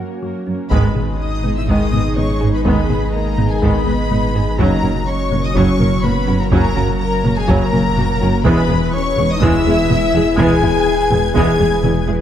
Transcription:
Already playing: A#3 C#4 F#4 C#5
0.00 A#3 F#4 A#4
0.23 F#2 F#3 A#3 A#4
0.47 F#2 A#3 C#4 A#4
0.70 G#1 G#2 D#3 G#3 B3 D#4 G#4 B4 D#5 B5, taiko
0.95 G#1 G#2 B3 G#4, taiko low-mid
1.19 D#4 D#5 D#6
1.44 G#1 G#2 B3 G#4, taiko low-mid
1.56 E4 E5 E6
1.67 G#1 G#2 D#3 G#3 B3 D#4 D#5 D#6, taiko
1.92 G#1 G#2 B3 G#4, taiko low-mid
2.16 G#1 G#2 G#3 B3 C#4 D#4 C#5 C#6, taiko low-mid
2.41 G#1 G#2 B3 G#4
2.53 B3 B4 B5
2.64 G#1 G#2 D#3 G#3 B3 B4 B5, taiko
2.89 G#1 G#2 B3 G#4, taiko low-mid
3.13 A#3 A#4 A#5
3.38 G#1 G#2 B3 G#4, taiko low-mid
3.50 G#3 G#4 G#5
3.62 G#1 G#2 D#3 G#3 B3 B4 B5, taiko
3.87 G#1 G#2 B3 G#4, taiko low-mid
4.10 G#1 G#2 G#3 B3 D#4, taiko low-mid
4.34 G#1 G#2 B3 G#4
4.58 F#1 F#2 C#3 F#3 A#3 C#4 F#4 A#4 C#5 A#5, taiko
4.83 F#1 F#2 C#4 F#4 A#4, taiko low-mid
5.06 C#4 C#5 C#6
5.32 F#1 F#2 A#3 C#4 A#4, taiko low-mid
5.42 D#4 D#5 D#6
5.55 F#1 F#2 C#3 F#3 C#4 C#5 C#6, taiko
5.79 F#1 F#2 A#3 C#4 A#4, taiko low-mid
6.03 F#1 F#2 A#3 B3 F#4 B4 B5, taiko low-mid
6.27 F#1 F#2 C#4 F#4 A#4
6.40 A#3 A#4 A#5
6.51 F#1 F#2 C#3 F#3 A#3 C#4 A#4 A#5, taiko
6.76 F#1 F#2 C#4 F#4 A#4, taiko low-mid
6.99 A#3 A#4 A#5
7.24 F#1 F#2 A#3 C#4 A#4, taiko low-mid
7.37 G#3 G#4 G#5
7.48 F#1 F#2 C#3 F#3 A#3 C#4 A#4 A#5, taiko
7.72 F#1 F#2 A#3 C#4 A#4, taiko low-mid
7.97 F#1 F#2 A#3 F#4, taiko low-mid
8.21 F#1 F#2 C#4 F#4 A#4
8.45 E1 E2 E3 G#3 B3 E4 G#4 B4 B5, taiko
8.69 E1 E2 G#3 E4 G#4, taiko low-mid
8.94 C#4 C#5 C#6
9.18 E1 E2 G#3 G#4, taiko low-mid
9.30 D#4 D#5 D#6
9.41 E1 E2 E3 G#3 B3 E4 E5 E6, taiko
9.66 E1 E2 G#3 G#4, taiko low-mid
9.90 E1 E2 E3 G#3 E4, taiko low-mid
10.14 E1 E2 G#3 E4 G#4
10.36 E1 E2 E3 G#3 B3 G#4 G#5 G#6, taiko
10.62 E1 E2 G#3 E4 G#4, taiko low-mid
11.11 E1 E2 G#3 G#4, taiko low-mid
11.34 E1 E2 E3 G#3 B3 G#4 G#5 G#6, taiko
11.59 E1 E2 G#3 G#4, taiko low-mid
11.82 E1 E2 E3 G#3 E4, taiko low-mid
12.06 E1 E2 G#3 E4 G#4

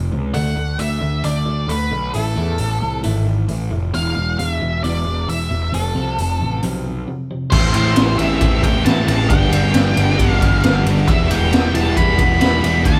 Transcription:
0.12 C#2 F2 C3
0.34 D2 D3 A3 D4 F#5, open hi-hat
0.56 D2 D3 A3
0.79 D2 D3 A3 E5, open hi-hat
1.01 D2 D3 A3
1.24 D2 D3 A3 D4 D5, open hi-hat
1.46 D2 D3 A3
1.68 D2 D3 A3 B4, open hi-hat
1.91 B1 D3 A3
2.14 A1 A2 E3 A3 A4, open hi-hat
2.36 E2 A2 E3 A3
2.58 A1 A2 E3, open hi-hat
2.82 C2 A2 E3
3.03 G#1 A2 E3 A3, open hi-hat
3.26 A2 E3
3.48 A1 A2 E3, open hi-hat
3.70 F1 A2 E3
3.94 E1 E2 B2 E3 F5, open hi-hat
4.16 E1 E2 B2
4.39 E1 E2 B2 F5, open hi-hat
4.50 E5
4.61 E1 E2 B2
4.84 E1 E2 B2 E3 D5, open hi-hat
5.06 E1 E2 B2
5.28 E1 E2 B2 E5, open hi-hat
5.50 E1 E2 B2
5.72 F1 F2 C3 F3 A4, open hi-hat
5.95 C2 F2 C3 F3
6.17 F1 F2 C3, open hi-hat
6.40 A1 F2 C3
6.63 B1 F2 C3 F3, open hi-hat
6.86 F2 C3
7.08 F2 C3
7.31 F2 C3
7.50 A1 A2 E3 A3 C4 A4 C5, kick, crash
7.55 E4
7.74 A1 A3 C4 E4 C5, ride
7.96 A1 A2 E3 A3 C4 E4, snare, ride
8.18 A1 A2 E3 A3 C4 E4 A4 E5, ride
8.41 A1 E3 A3 C4 E4, kick, ride
8.63 A2 E3 A3 C4 E4 G5, kick, ride
8.85 A1 A2 E3 A3 C4 E4 A4 A5, snare, ride
9.07 A1 A3 C4 E4 A5, ride
9.29 G1 G2 D3 G3 B3 D4 G4 G5, kick, ride
9.51 G1 B3 D4, ride
9.55 G3
9.74 G1 G2 D3 G3 B3, snare, ride
9.78 D4
9.97 G1 G2 D3 G3 B3 D4 G4, ride
10.09 snare
10.19 G1 D3 G3 B3 D4, kick, ride
10.31 F5
10.41 G1 G2 D3 G3 B3 D4, kick, ride
10.63 G1 G2 D3 G3 B3 D4 G4, snare, ride
10.85 G1 B3 D4, ride
10.89 G3
11.08 E1 E3 G3 B3 E4 E5, kick, ride
11.29 E1 B3 E4 G5, ride
11.33 G3
11.52 E1 E3 G3 B3 E4, snare, ride
11.74 E1 E3 G3 B3 E4 A5, ride
11.96 E1 E3 G3 B3 E4 B5, kick, ride
12.18 E3 G3 B3 E4, kick, ride
12.40 E1 E3 G3 B3 E4 B5, snare, ride
12.64 E1 G3 B3 E4, ride
12.84 D2 D3 A3 D4 F4 A5, kick, ride

